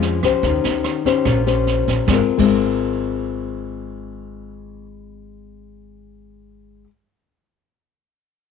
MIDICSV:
0, 0, Header, 1, 4, 480
1, 0, Start_track
1, 0, Key_signature, -4, "major"
1, 0, Tempo, 412088
1, 502, Time_signature, 4, 2, 24, 8
1, 9904, End_track
2, 0, Start_track
2, 0, Title_t, "Nylon-string guitar"
2, 0, Program_c, 0, 24
2, 0, Note_on_c, 0, 53, 52
2, 0, Note_on_c, 0, 56, 55
2, 0, Note_on_c, 0, 61, 53
2, 0, Note_on_c, 0, 65, 58
2, 228, Note_off_c, 0, 56, 0
2, 232, Note_off_c, 0, 61, 0
2, 235, Note_off_c, 0, 65, 0
2, 276, Note_on_c, 0, 61, 57
2, 285, Note_on_c, 0, 67, 53
2, 287, Note_on_c, 0, 72, 56
2, 482, Note_off_c, 0, 53, 0
2, 522, Note_on_c, 0, 51, 46
2, 1192, Note_off_c, 0, 61, 0
2, 1194, Note_off_c, 0, 67, 0
2, 1197, Note_off_c, 0, 72, 0
2, 1231, Note_on_c, 0, 61, 53
2, 1239, Note_on_c, 0, 67, 55
2, 1240, Note_on_c, 0, 72, 51
2, 1449, Note_off_c, 0, 51, 0
2, 1463, Note_on_c, 0, 46, 51
2, 1670, Note_off_c, 0, 61, 0
2, 1671, Note_off_c, 0, 67, 0
2, 1673, Note_off_c, 0, 72, 0
2, 1700, Note_on_c, 0, 61, 49
2, 1707, Note_on_c, 0, 67, 44
2, 1717, Note_on_c, 0, 72, 54
2, 2383, Note_off_c, 0, 61, 0
2, 2387, Note_off_c, 0, 67, 0
2, 2392, Note_off_c, 0, 72, 0
2, 2399, Note_off_c, 0, 46, 0
2, 2404, Note_on_c, 0, 56, 48
2, 2437, Note_on_c, 0, 60, 50
2, 2455, Note_on_c, 0, 65, 56
2, 2476, Note_on_c, 0, 70, 54
2, 2761, Note_off_c, 0, 56, 0
2, 2766, Note_on_c, 0, 56, 49
2, 2794, Note_off_c, 0, 60, 0
2, 2799, Note_on_c, 0, 60, 52
2, 2801, Note_off_c, 0, 70, 0
2, 2818, Note_off_c, 0, 65, 0
2, 2823, Note_on_c, 0, 65, 55
2, 2842, Note_on_c, 0, 70, 54
2, 8000, Note_off_c, 0, 56, 0
2, 8017, Note_off_c, 0, 60, 0
2, 8029, Note_off_c, 0, 65, 0
2, 8039, Note_off_c, 0, 70, 0
2, 9904, End_track
3, 0, Start_track
3, 0, Title_t, "Upright bass"
3, 0, Program_c, 1, 32
3, 0, Note_on_c, 1, 41, 89
3, 221, Note_off_c, 1, 41, 0
3, 268, Note_on_c, 1, 37, 66
3, 377, Note_off_c, 1, 37, 0
3, 505, Note_on_c, 1, 39, 87
3, 727, Note_off_c, 1, 39, 0
3, 752, Note_on_c, 1, 39, 70
3, 971, Note_off_c, 1, 39, 0
3, 1466, Note_on_c, 1, 34, 82
3, 2138, Note_off_c, 1, 34, 0
3, 2187, Note_on_c, 1, 34, 65
3, 2297, Note_off_c, 1, 34, 0
3, 2423, Note_on_c, 1, 32, 77
3, 2557, Note_off_c, 1, 32, 0
3, 2782, Note_on_c, 1, 32, 67
3, 7962, Note_off_c, 1, 32, 0
3, 9904, End_track
4, 0, Start_track
4, 0, Title_t, "Drums"
4, 21, Note_on_c, 9, 38, 20
4, 137, Note_off_c, 9, 38, 0
4, 262, Note_on_c, 9, 36, 21
4, 267, Note_on_c, 9, 37, 48
4, 267, Note_on_c, 9, 38, 20
4, 379, Note_off_c, 9, 36, 0
4, 384, Note_off_c, 9, 37, 0
4, 384, Note_off_c, 9, 38, 0
4, 501, Note_on_c, 9, 38, 22
4, 502, Note_on_c, 9, 36, 55
4, 617, Note_off_c, 9, 38, 0
4, 618, Note_off_c, 9, 36, 0
4, 743, Note_on_c, 9, 38, 20
4, 860, Note_off_c, 9, 38, 0
4, 983, Note_on_c, 9, 37, 50
4, 983, Note_on_c, 9, 38, 20
4, 1099, Note_off_c, 9, 37, 0
4, 1099, Note_off_c, 9, 38, 0
4, 1224, Note_on_c, 9, 36, 20
4, 1232, Note_on_c, 9, 38, 22
4, 1341, Note_off_c, 9, 36, 0
4, 1348, Note_off_c, 9, 38, 0
4, 1461, Note_on_c, 9, 37, 48
4, 1461, Note_on_c, 9, 38, 18
4, 1462, Note_on_c, 9, 36, 45
4, 1577, Note_off_c, 9, 37, 0
4, 1577, Note_off_c, 9, 38, 0
4, 1579, Note_off_c, 9, 36, 0
4, 1711, Note_on_c, 9, 38, 18
4, 1827, Note_off_c, 9, 38, 0
4, 1944, Note_on_c, 9, 38, 19
4, 2060, Note_off_c, 9, 38, 0
4, 2182, Note_on_c, 9, 36, 21
4, 2185, Note_on_c, 9, 38, 21
4, 2299, Note_off_c, 9, 36, 0
4, 2301, Note_off_c, 9, 38, 0
4, 2420, Note_on_c, 9, 38, 51
4, 2421, Note_on_c, 9, 36, 66
4, 2536, Note_off_c, 9, 38, 0
4, 2537, Note_off_c, 9, 36, 0
4, 2781, Note_on_c, 9, 36, 44
4, 2785, Note_on_c, 9, 49, 41
4, 2897, Note_off_c, 9, 36, 0
4, 2902, Note_off_c, 9, 49, 0
4, 9904, End_track
0, 0, End_of_file